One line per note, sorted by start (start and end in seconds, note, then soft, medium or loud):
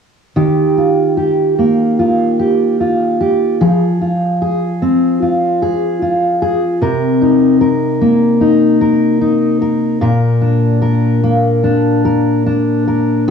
0.36 3.61 D#3 medium
0.36 1.16 G4 soft
0.77 1.99 F4 soft
1.17 2.38 G4 soft
1.59 3.70 A#3 soft
1.99 2.80 F4 soft
2.39 3.19 G4 soft
2.80 4.01 F4 soft
3.21 3.61 G4 soft
3.61 6.82 F3 medium
3.61 4.41 G#4 soft
4.01 5.21 F4 soft
4.42 5.61 G#4 soft
4.82 7.64 C4 soft
5.22 6.01 F4 soft
5.62 6.41 G#4 soft
6.02 6.90 F4 soft
6.42 6.82 G#4 soft
6.82 10.02 C3 medium
6.82 7.61 A#4 medium
7.22 8.40 D#4 soft
7.61 8.81 A#4 soft
8.01 11.23 A#3 soft
8.41 9.20 D#4 soft
8.81 9.61 A#4 soft
9.21 10.10 D#4 soft
9.62 10.02 A#4 soft
10.01 13.28 A#2 medium
10.01 10.81 A#4 medium
10.42 11.63 D4 soft
10.82 12.04 A#4 soft
11.24 13.30 A#3 soft
11.64 12.45 D4 soft
12.05 12.87 A#4 soft
12.46 13.30 D4 soft
12.87 13.28 A#4 soft